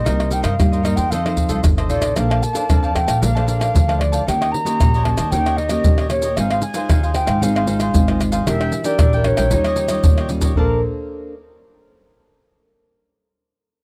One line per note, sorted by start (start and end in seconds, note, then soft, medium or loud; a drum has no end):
0.00 0.34 D#5 medium
0.05 0.40 C2 medium
0.05 0.56 C3 medium
0.05 0.40 A#3 medium
0.05 0.29 D#4 medium
0.05 0.41 D#4 medium
0.05 0.41 G4 medium
0.05 0.30 A#4 medium
0.05 0.31 C5 medium
0.05 0.31 D#5 medium
0.05 pandeiro medium
0.05 tamborim medium
0.05 maracas medium
0.05 surdo medium
0.20 pandeiro soft
0.20 tamborim medium
0.20 maracas soft
0.30 0.41 D#4 soft
0.30 0.42 A#4 soft
0.30 0.42 C5 medium
0.30 0.42 D#5 soft
0.30 0.43 G5 medium
0.30 pandeiro medium
0.30 maracas medium
0.42 0.57 G2 medium
0.42 0.53 D#4 medium
0.42 0.54 A#4 medium
0.42 0.54 C5 medium
0.42 0.54 D#5 medium
0.42 0.86 F5 medium
0.42 pandeiro medium
0.42 tamborim medium
0.42 maracas medium
0.59 0.93 G2 medium
0.59 1.09 G3 medium
0.59 0.81 A#3 medium
0.59 0.81 D#4 medium
0.59 0.82 G4 medium
0.59 pandeiro medium
0.59 tamborim medium
0.59 maracas medium
0.59 surdo medium
0.72 0.83 A#4 soft
0.72 0.83 C5 soft
0.72 0.84 D#5 soft
0.72 pandeiro soft
0.72 maracas soft
0.83 1.09 A#3 medium
0.83 0.97 D#4 medium
0.83 1.10 D#4 medium
0.83 1.10 G4 medium
0.83 0.97 A#4 medium
0.83 0.97 C5 medium
0.83 0.97 D#5 medium
0.83 0.95 D#5 medium
0.83 pandeiro medium
0.83 tamborim medium
0.83 maracas medium
0.96 1.12 E2 medium
0.96 1.11 A#4 soft
0.96 1.10 C5 soft
0.96 1.10 D#5 soft
0.96 1.11 G5 medium
0.96 pandeiro medium
0.96 maracas medium
1.10 1.46 F2 loud
1.10 1.62 F3 medium
1.10 1.20 D#4 medium
1.10 1.24 F4 medium
1.10 1.24 A4 medium
1.10 1.20 A4 medium
1.10 1.20 C5 medium
1.10 1.24 C5 medium
1.10 1.24 D#5 medium
1.10 1.63 F5 medium
1.10 pandeiro medium
1.10 maracas medium
1.10 surdo medium
1.25 1.74 D#4 medium
1.25 1.74 A4 medium
1.25 1.48 A4 soft
1.25 1.74 C5 medium
1.25 1.49 C5 soft
1.25 1.49 D#5 soft
1.25 pandeiro soft
1.25 tamborim medium
1.25 maracas soft
1.37 pandeiro medium
1.37 maracas medium
1.37 surdo medium
1.49 1.61 C2 medium
1.49 1.59 F4 medium
1.49 1.59 A4 medium
1.49 1.60 C5 medium
1.49 1.60 D#5 medium
1.49 pandeiro medium
1.49 maracas medium
1.64 1.88 G1 medium
1.64 2.14 C3 medium
1.64 pandeiro medium
1.64 tamborim medium
1.64 maracas medium
1.64 surdo medium
1.77 2.13 D#4 medium
1.77 2.13 A4 medium
1.77 1.89 A4 soft
1.77 2.13 C5 medium
1.77 1.89 C5 soft
1.77 1.90 D#5 medium
1.77 pandeiro soft
1.77 tamborim medium
1.77 maracas soft
1.89 2.14 A1 medium
1.89 2.02 F4 medium
1.89 2.02 A4 medium
1.89 2.02 C5 medium
1.89 2.14 D5 medium
1.89 2.01 D#5 medium
1.89 pandeiro medium
1.89 maracas medium
2.02 2.16 A4 soft
2.02 2.16 C5 soft
2.02 2.15 D#5 medium
2.02 pandeiro medium
2.02 tamborim medium
2.02 maracas medium
2.16 2.40 A#1 medium
2.16 2.67 A#3 medium
2.16 2.42 D4 medium
2.16 2.42 A4 medium
2.16 2.29 A#4 soft
2.16 2.42 C5 medium
2.16 2.29 D5 soft
2.16 2.44 F5 medium
2.16 2.30 F5 soft
2.16 2.29 A5 medium
2.16 pandeiro medium
2.16 tamborim medium
2.16 maracas medium
2.16 surdo medium
2.30 2.41 D5 soft
2.30 2.42 F5 medium
2.30 2.42 A5 medium
2.30 pandeiro soft
2.30 tamborim medium
2.30 maracas soft
2.42 2.96 A5 medium
2.42 muted cavaquinho stroke soft
2.42 pandeiro medium
2.42 maracas medium
2.53 2.64 D4 medium
2.53 2.64 A4 medium
2.53 2.65 C5 medium
2.53 2.68 D5 medium
2.53 2.68 F5 medium
2.53 2.67 A5 medium
2.53 pandeiro medium
2.53 maracas medium
2.69 3.03 F2 medium
2.69 3.20 F3 medium
2.69 2.92 D4 medium
2.69 2.92 A4 medium
2.69 2.82 A#4 soft
2.69 2.92 C5 medium
2.69 2.82 D5 soft
2.69 2.82 F5 medium
2.69 2.81 A5 medium
2.69 pandeiro medium
2.69 tamborim medium
2.69 maracas medium
2.69 surdo loud
2.83 3.07 D5 medium
2.83 3.07 F5 medium
2.83 3.05 A5 medium
2.83 pandeiro soft
2.83 maracas soft
2.94 3.31 D4 soft
2.94 3.31 A4 soft
2.94 3.31 C5 medium
2.94 3.21 G5 medium
2.94 pandeiro medium
2.94 tamborim medium
2.94 maracas medium
2.94 surdo medium
3.06 3.19 A#2 medium
3.06 3.21 D5 medium
3.06 3.21 F5 medium
3.06 3.20 A5 medium
3.06 pandeiro medium
3.06 tamborim medium
3.06 maracas medium
3.22 3.67 A#1 loud
3.22 3.72 A#3 medium
3.22 3.34 A#4 soft
3.22 3.34 D5 soft
3.22 3.47 F5 medium
3.22 3.35 F5 medium
3.22 3.34 A5 medium
3.22 pandeiro medium
3.22 maracas medium
3.22 surdo medium
3.35 3.84 D4 medium
3.35 3.84 A4 medium
3.35 3.84 C5 medium
3.35 3.46 D5 medium
3.35 3.47 F5 medium
3.35 3.47 A5 medium
3.35 pandeiro soft
3.35 tamborim medium
3.35 maracas soft
3.46 3.60 A#4 medium
3.46 3.60 D5 soft
3.46 3.60 F5 medium
3.46 4.00 F5 loud
3.46 3.58 A5 medium
3.46 pandeiro medium
3.46 maracas medium
3.60 3.87 D5 medium
3.60 3.87 F5 medium
3.60 3.86 A5 medium
3.60 pandeiro medium
3.60 tamborim medium
3.60 maracas medium
3.74 4.19 D2 loud
3.74 4.24 F3 medium
3.74 pandeiro medium
3.74 maracas medium
3.74 surdo loud
3.88 4.23 D4 medium
3.88 4.23 A4 medium
3.88 4.24 C5 medium
3.88 3.99 D5 medium
3.88 3.99 F5 medium
3.88 4.00 A5 medium
3.88 pandeiro soft
3.88 tamborim medium
3.88 maracas soft
3.99 4.26 D5 medium
3.99 muted cavaquinho stroke soft
3.99 pandeiro medium
3.99 tamborim medium
4.12 4.26 D5 medium
4.12 4.26 F5 medium
4.12 4.25 A5 medium
4.12 pandeiro medium
4.12 maracas medium
4.27 4.50 D#2 medium
4.27 4.77 D#3 medium
4.27 4.63 A#3 medium
4.27 4.63 C#4 medium
4.27 4.39 D#4 soft
4.27 4.39 G4 medium
4.27 4.63 G4 medium
4.27 4.40 C#5 medium
4.27 4.40 D#5 medium
4.27 4.53 G5 loud
4.27 pandeiro medium
4.27 tamborim medium
4.27 maracas medium
4.27 surdo medium
4.41 4.52 G4 soft
4.41 4.53 C#5 medium
4.41 4.53 D#5 medium
4.41 pandeiro soft
4.41 tamborim medium
4.41 maracas soft
4.51 5.05 A#5 medium
4.51 muted cavaquinho stroke soft
4.51 pandeiro medium
4.65 5.01 A#3 medium
4.65 5.01 C#4 medium
4.65 5.01 G4 medium
4.65 4.79 G4 medium
4.65 4.79 C#5 medium
4.65 4.78 D#5 medium
4.65 pandeiro medium
4.65 maracas medium
4.80 5.13 A#1 medium
4.80 5.30 A#2 medium
4.80 4.92 D#4 medium
4.80 4.92 G4 medium
4.80 4.93 C#5 medium
4.80 4.93 D#5 medium
4.80 pandeiro medium
4.80 tamborim medium
4.80 maracas medium
4.80 surdo loud
4.94 5.19 G4 medium
4.94 5.18 C#5 medium
4.94 5.17 D#5 medium
4.94 pandeiro soft
4.94 maracas soft
5.03 5.21 A#3 soft
5.03 5.21 C#4 medium
5.03 5.21 G4 medium
5.03 5.32 A5 loud
5.03 pandeiro medium
5.03 tamborim medium
5.18 5.30 D#3 medium
5.18 5.32 G4 medium
5.18 5.31 C#5 medium
5.18 5.31 D#5 medium
5.18 pandeiro medium
5.18 tamborim medium
5.18 maracas medium
5.31 5.77 D#2 loud
5.31 5.82 D#3 medium
5.31 5.57 A#3 medium
5.31 5.57 C#4 medium
5.31 5.44 D#4 medium
5.31 5.57 G4 medium
5.31 5.45 G4 medium
5.31 5.45 C#5 medium
5.31 5.45 D#5 medium
5.31 5.58 G5 loud
5.31 pandeiro medium
5.31 maracas medium
5.31 surdo medium
5.46 5.57 G4 medium
5.46 5.58 C#5 medium
5.46 5.58 D#5 medium
5.46 pandeiro soft
5.46 tamborim medium
5.46 maracas soft
5.56 5.70 D#4 medium
5.56 5.71 G4 medium
5.56 5.70 C#5 medium
5.56 6.10 D#5 loud
5.56 5.69 D#5 medium
5.56 pandeiro medium
5.69 6.06 A#3 medium
5.69 6.06 C#4 medium
5.69 6.07 G4 medium
5.69 5.97 G4 medium
5.69 5.97 C#5 medium
5.69 5.96 D#5 medium
5.69 pandeiro medium
5.69 tamborim medium
5.69 maracas medium
5.84 6.29 D#2 loud
5.84 6.34 A#2 medium
5.84 pandeiro medium
5.84 maracas medium
5.84 surdo loud
5.98 6.11 G4 medium
5.98 6.11 C#5 medium
5.98 6.11 D#5 medium
5.98 pandeiro soft
5.98 tamborim medium
5.98 maracas soft
6.09 6.26 A#3 medium
6.09 6.26 C#4 medium
6.09 6.26 G4 medium
6.09 6.38 C#5 medium
6.09 muted cavaquinho stroke soft
6.09 pandeiro medium
6.09 tamborim medium
6.09 maracas medium
6.22 6.37 C#5 medium
6.22 6.36 D#5 medium
6.22 pandeiro medium
6.22 maracas medium
6.26 6.37 G4 medium
6.36 6.60 G#1 loud
6.36 6.87 G#3 medium
6.36 6.61 D#4 medium
6.36 6.50 D#4 medium
6.36 6.62 F4 medium
6.36 6.50 G#4 medium
6.36 6.62 C5 medium
6.36 6.51 C5 medium
6.36 6.62 F5 medium
6.36 pandeiro medium
6.36 tamborim medium
6.36 maracas medium
6.36 surdo medium
6.41 6.50 F5 medium
6.51 6.63 G#4 medium
6.51 6.63 C5 medium
6.51 6.63 F5 medium
6.51 pandeiro soft
6.51 tamborim medium
6.51 maracas soft
6.62 7.12 G#5 loud
6.62 muted cavaquinho stroke soft
6.62 pandeiro medium
6.62 maracas medium
6.74 7.10 D#4 medium
6.74 7.11 F4 medium
6.74 6.89 G#4 medium
6.74 7.11 C5 medium
6.74 6.89 C5 medium
6.74 6.88 F5 medium
6.74 pandeiro medium
6.74 maracas medium
6.89 7.23 D#2 medium
6.89 7.39 D#3 medium
6.89 7.02 D#4 soft
6.89 7.02 G#4 medium
6.89 7.02 C5 medium
6.89 7.02 F5 medium
6.89 pandeiro medium
6.89 tamborim medium
6.89 maracas medium
6.89 surdo loud
7.03 7.27 G#4 medium
7.03 7.26 C5 medium
7.03 7.25 F5 medium
7.03 pandeiro soft
7.03 maracas soft
7.14 7.38 D#4 medium
7.14 7.38 F4 medium
7.14 7.38 C5 medium
7.14 7.43 G5 medium
7.14 pandeiro medium
7.14 tamborim medium
7.14 maracas medium
7.26 7.39 G#2 medium
7.26 7.41 G#4 medium
7.26 7.40 C5 medium
7.26 7.40 F5 medium
7.26 pandeiro medium
7.26 tamborim medium
7.26 maracas medium
7.41 7.87 G#1 loud
7.41 7.92 G#3 medium
7.41 7.54 D#4 medium
7.41 7.64 D#4 medium
7.41 7.64 F4 medium
7.41 7.54 G#4 medium
7.41 7.64 C5 medium
7.41 7.54 C5 medium
7.41 7.68 F5 medium
7.41 7.54 F5 medium
7.41 pandeiro medium
7.41 maracas medium
7.41 surdo medium
7.55 7.67 G#4 medium
7.55 7.68 C5 medium
7.55 7.67 F5 medium
7.55 pandeiro soft
7.55 tamborim medium
7.55 maracas soft
7.66 8.03 D#4 medium
7.66 7.80 D#4 medium
7.66 8.03 F4 medium
7.66 7.80 G#4 medium
7.66 8.03 C5 medium
7.66 7.80 C5 medium
7.66 8.17 F5 medium
7.66 7.79 F5 medium
7.66 pandeiro medium
7.66 maracas medium
7.80 8.07 G#4 medium
7.80 8.07 C5 medium
7.80 8.06 F5 medium
7.80 pandeiro medium
7.80 tamborim medium
7.80 maracas medium
7.94 8.39 G#1 loud
7.94 8.45 D#3 medium
7.94 pandeiro medium
7.94 maracas medium
7.94 surdo loud
8.08 8.43 D#4 medium
8.08 8.43 F4 medium
8.08 8.20 G#4 medium
8.08 8.44 C5 medium
8.08 8.20 C5 medium
8.08 8.20 F5 medium
8.08 pandeiro soft
8.08 tamborim medium
8.08 maracas soft
8.21 muted cavaquinho stroke soft
8.21 pandeiro medium
8.21 tamborim medium
8.21 maracas medium
8.32 8.46 G#4 medium
8.32 8.46 C5 medium
8.32 8.45 F5 medium
8.32 pandeiro medium
8.32 maracas loud
8.46 8.69 E1 loud
8.46 8.97 E3 medium
8.46 8.82 D4 medium
8.46 8.59 D4 medium
8.46 8.82 G4 medium
8.46 8.59 A#4 medium
8.46 8.83 A#4 medium
8.46 8.87 E5 loud
8.46 8.60 E5 medium
8.46 8.60 G5 medium
8.46 pandeiro medium
8.46 tamborim medium
8.46 maracas medium
8.46 surdo medium
8.61 8.73 A#4 medium
8.61 8.73 E5 medium
8.61 8.73 G5 medium
8.61 pandeiro soft
8.61 tamborim medium
8.61 maracas soft
8.72 muted cavaquinho stroke soft
8.72 pandeiro medium
8.72 maracas medium
8.84 9.21 D4 medium
8.84 9.21 G4 medium
8.84 9.21 A#4 medium
8.84 8.99 A#4 medium
8.84 9.28 D5 loud
8.84 8.99 E5 medium
8.84 8.98 G5 medium
8.84 pandeiro medium
8.84 maracas medium
8.99 9.33 A#1 medium
8.99 9.49 E3 medium
8.99 9.12 D4 soft
8.99 9.12 A#4 medium
8.99 9.13 E5 medium
8.99 9.12 G5 medium
8.99 pandeiro medium
8.99 tamborim medium
8.99 maracas medium
8.99 surdo loud
9.13 9.38 A#4 medium
9.13 9.37 E5 medium
9.13 9.36 G5 medium
9.13 pandeiro soft
9.13 maracas soft
9.24 9.47 D4 medium
9.24 9.47 G4 soft
9.24 9.48 A#4 medium
9.24 10.31 C#5 medium
9.24 pandeiro medium
9.24 tamborim medium
9.24 surdo medium
9.37 9.50 A#1 medium
9.37 9.51 A#4 medium
9.37 9.51 E5 medium
9.37 9.50 G5 medium
9.37 pandeiro medium
9.37 tamborim medium
9.37 maracas medium
9.51 9.97 D#2 loud
9.51 10.01 D#3 medium
9.51 9.87 G3 medium
9.51 9.87 C#4 medium
9.51 9.64 D#4 medium
9.51 9.87 F4 medium
9.51 9.65 G4 medium
9.51 9.65 C#5 medium
9.51 9.65 D#5 medium
9.51 pandeiro medium
9.51 maracas medium
9.51 surdo medium
9.64 9.77 C#5 medium
9.64 9.78 D#5 medium
9.64 pandeiro soft
9.64 tamborim medium
9.64 maracas soft
9.69 9.77 G4 medium
9.76 9.90 D#4 medium
9.76 9.90 G4 medium
9.76 9.91 C#5 medium
9.76 9.89 D#5 medium
9.76 pandeiro medium
9.76 maracas medium
9.88 10.25 G3 medium
9.88 10.26 C#4 medium
9.88 10.26 F4 medium
9.88 10.17 C#5 medium
9.88 10.16 D#5 medium
9.88 pandeiro medium
9.88 tamborim medium
9.88 maracas medium
9.93 10.17 G4 medium
10.03 10.50 D#2 loud
10.03 10.54 A#2 medium
10.03 pandeiro medium
10.03 maracas medium
10.03 surdo loud
10.18 10.30 G4 medium
10.18 10.31 C#5 medium
10.18 10.30 D#5 medium
10.18 pandeiro soft
10.18 tamborim medium
10.18 maracas soft
10.29 10.52 G3 medium
10.29 10.52 C#4 medium
10.29 10.53 F4 medium
10.29 muted cavaquinho stroke soft
10.29 pandeiro medium
10.29 maracas medium
10.41 10.57 G4 medium
10.41 10.56 C#5 medium
10.41 10.55 D#5 medium
10.41 pandeiro medium
10.41 maracas loud
10.41 surdo medium
10.55 10.82 A#1 medium
10.55 11.34 A#3 medium
10.55 11.33 D4 medium
10.55 11.34 A4 medium
10.55 10.78 A#4 medium
10.55 10.82 A#4 medium
10.55 11.34 C5 medium
10.55 10.78 D5 medium
10.55 10.78 F5 medium
10.55 10.79 A5 medium
10.55 surdo loud